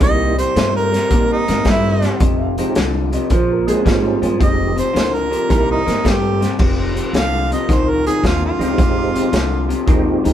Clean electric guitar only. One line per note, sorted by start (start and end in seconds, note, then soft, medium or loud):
0.01 0.35 C3 medium
0.01 0.35 G3 loud
0.38 0.54 C3 medium
0.38 0.54 G3 medium
0.56 0.89 C3 medium
0.56 0.90 A3 medium
0.92 1.09 C3 medium
0.92 1.09 G3 medium
1.10 1.44 C3 medium
1.10 1.44 A#3 medium
1.48 1.63 C3 medium
1.48 1.64 A#3 medium
1.64 1.99 C3 medium
1.64 1.99 A3 medium
2.02 2.18 C3 medium
2.02 2.19 G3 medium
2.21 2.54 F2 medium
2.21 2.54 C3 loud
2.59 2.74 F2 medium
2.59 2.74 C3 medium
2.76 3.09 F2 medium
2.76 3.10 D3 medium
3.12 3.28 F2 medium
3.12 3.29 C3 medium
3.31 3.64 A#2 medium
3.31 3.65 F3 medium
3.68 3.84 A#2 medium
3.68 3.84 G#3 medium
3.85 4.18 A#2 medium
3.85 4.19 G3 medium
4.22 4.38 A#2 medium
4.22 4.38 F3 medium
4.39 4.73 F2 medium
4.39 4.73 C3 medium
4.76 4.92 F2 medium
4.76 4.93 C3 medium
4.93 5.28 F2 medium
4.93 5.28 D3 medium
5.30 5.47 F2 medium
5.30 5.47 C3 medium
5.49 5.83 C3 medium
5.49 5.83 G3 medium
5.86 6.02 C3 medium
5.86 6.02 A#3 medium
6.04 6.37 C3 medium
6.04 6.38 A3 medium
6.41 6.57 C3 medium
6.41 6.57 G3 medium
6.59 6.93 F2 medium
6.59 6.93 C3 medium
6.95 7.12 F2 medium
6.95 7.12 C3 medium
7.14 7.48 F2 medium
7.14 7.48 D3 medium
7.51 7.67 F2 medium
7.51 7.67 C3 medium
7.68 8.02 F2 medium
7.68 8.02 D#3 medium
8.06 8.22 F2 medium
8.06 8.22 D#3 medium
8.24 8.57 F2 medium
8.24 8.58 D3 medium
8.61 8.77 F2 medium
8.61 8.77 C3 medium
8.78 9.11 F2 medium
8.78 9.12 C3 medium
9.15 9.31 F2 medium
9.15 9.31 C3 medium
9.32 9.66 F2 medium
9.32 9.66 D3 medium
9.69 9.85 F2 medium
9.69 9.86 C3 medium
9.87 10.21 F2 medium
9.87 10.21 D#3 medium
10.24 10.33 F2 medium
10.24 10.33 D#3 medium